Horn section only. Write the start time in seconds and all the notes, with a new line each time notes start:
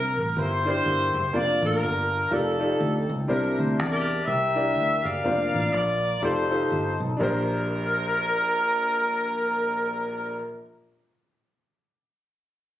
Already playing: A#4
0.18 A#4
0.37 E4 G4 C5
0.67 E4 G4 C5
1.35 F4 A#4 D5
1.63 D4 F4 A#4
2.32 C4 D#4 A4
3.30 D4 E4 A#4
3.58 C5
3.77 D5
3.90 G4 A#4 D5
4.24 G4 A#4 E5
5.02 A#4 D5 F5
5.72 F4 A#4 D5
6.21 D#4 A4 C5
7.20 A#4